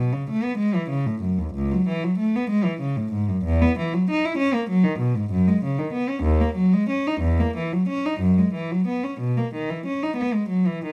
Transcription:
cello
Already playing: B2
0.13 C#3
0.30 A3
0.44 B3
0.58 G#3
0.75 E3
0.89 C#3
1.06 A2
1.21 F#2
1.38 D#2
1.54 C#2
1.72 F#3
1.88 E3
2.04 F#3
2.18 A3
2.36 B3
2.50 G#3
2.64 E3
2.81 C#3
2.96 A2
3.13 G#2
3.28 F#2
3.45 E2
3.62 B3
3.79 E3
3.94 F#3
4.10 D#4
4.25 E4
4.38 C#4
4.54 A#3
4.70 F#3
4.84 D#3
4.99 B2
5.15 G#2
5.31 F#2
5.47 G#3
5.64 C#3
5.79 D#3
5.93 B3
6.09 C#4
6.23 D#2
6.41 A#3
6.55 F#3
6.73 G#3
6.89 C#4
7.07 D#4
7.21 E2
7.40 A#3
7.57 E3
7.73 F#3
7.89 C#4
8.06 D#4
8.20 F#2
8.38 G#3
8.54 E3
8.71 F#3
8.87 B3
9.04 C#4
9.20 B2
9.37 A#3
9.54 D#3
9.70 E3
9.86 C#4
10.03 D#4
10.17 B3
10.34 G#3
10.49 F#3
10.67 E3
10.85 D#3

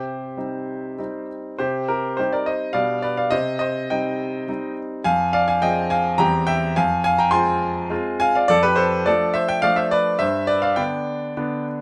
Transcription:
grand piano
Already playing: C3 G4 C5
0.37 G3 C4 D#4
0.98 G3 C4 D#4
1.59 C3 G4 C5
1.88 G4 A#4
2.17 G3 C4 D#4 G4 C5
2.33 A#4 D5
2.46 C5 D#5
2.73 B2 G3 D4 D5 F5
3.02 B4 D5
3.17 D5 F5
3.31 C3 C5 D#5
3.59 C5 D#5
3.90 G3 C4 D#4 D#5 G5
4.48 G3 C4 D#4
5.04 F2 F5 G#5
5.33 D5 F5
5.48 F5 G#5
5.62 F3 C4 G#4 D#5 G5
5.90 F5 G#5
6.18 E2 G3 C4 G4 G5 A#5
6.47 E5 G5
6.76 F2 F5 G#5
7.04 F5 G#5
7.19 G5 A#5
7.31 G#3 C4 F4 G#5 C6
7.90 G#3 C4 F4
8.20 F5 G#5
8.35 D5 F5
8.48 F2 A4 D5
8.63 G4 B4
8.76 A4 C5
9.06 F3 A3 D4 A4 D5
9.34 C5 E5
9.48 E5 G5
9.62 F3 A3 D4 D5 F5
9.76 C5 E5
9.91 B4 D5
10.19 G2 C5 E5
10.47 B4 D5
10.62 D5 F5
10.76 D3 B3 D4 D5 G5
11.37 D3 B3 D4

